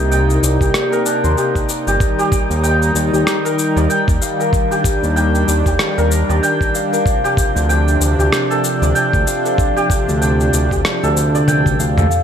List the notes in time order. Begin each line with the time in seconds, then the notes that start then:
Already playing: C2 C3 A#3 D#4 G4 A#4 D5 F5 G5
0.11 G5, shaker
0.30 shaker
0.43 C2 D5, shaker
0.61 C2 G4, kick, shaker
0.74 cross-stick, shaker
0.92 A#4, shaker
1.06 D4, shaker
1.24 D#2 C5, shaker
1.37 G4, shaker
1.55 kick, shaker
1.69 D5, shaker
1.87 G1 G4, shaker
2.00 D#3 G3 D#4, kick, shaker
2.18 G4, shaker
2.32 kick, shaker
2.50 D#2, shaker
2.63 G5, shaker
2.82 shaker
2.95 D#2 D5, shaker
3.13 D#2 G4, shaker
3.27 cross-stick, shaker
3.45 A#4, shaker
3.59 shaker
3.76 D#2 D5, shaker
3.90 G5, shaker
4.08 D#2, kick, shaker
4.21 F5, shaker
4.40 A#4, shaker
4.53 D4, kick, shaker
4.71 G4, shaker
4.84 kick, shaker
5.03 D#2, shaker
5.16 G5, shaker
5.35 shaker
5.48 D#2 D5, shaker
5.66 D#2 G4, kick, shaker
5.79 cross-stick, shaker
5.98 D#2 A#4, shaker
6.11 shaker
6.29 D#2 D5, shaker
6.43 G5, shaker
6.61 kick, shaker
6.74 F5, shaker
6.93 A#4, shaker
7.06 C3 F3, kick, shaker
7.24 G4, shaker
7.37 kick, shaker
7.56 D2, shaker
7.69 G5, shaker
7.88 shaker
8.01 D2 D5, shaker
8.19 D2 G4, shaker
8.33 cross-stick, shaker
8.50 A4, shaker
8.64 shaker
8.82 D2 D5, shaker
8.95 G5, shaker
9.13 D2, kick, shaker
9.27 F5, shaker
9.45 A4, shaker
9.58 kick, shaker
9.76 G4, shaker
9.90 kick, shaker
10.08 D2, shaker
10.21 G5, shaker
10.40 shaker
10.53 D2 D5, shaker
10.71 D2 G4, kick, shaker
10.85 cross-stick, shaker
11.03 D2 A4, shaker
11.16 D2, shaker
11.35 D5, shaker
11.48 G5, high tom, shaker
11.66 kick, high tom, shaker
11.79 D2 F5, shaker
11.98 A4, mid tom, shaker
12.11 A#2 G3 F4 F5, shaker